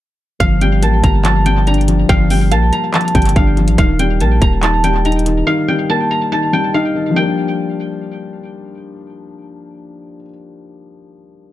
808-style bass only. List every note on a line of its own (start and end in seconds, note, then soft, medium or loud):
0.40 0.84 G1 loud
0.82 1.03 A1 loud
1.04 2.05 G1 loud
2.09 2.53 G1 loud
2.51 2.72 A#1 loud
3.15 3.35 G1 loud
3.36 3.69 G1 loud
3.68 3.78 A1 loud
3.78 4.22 D#1 loud
4.20 4.41 A#1 loud
4.42 5.43 D#1 loud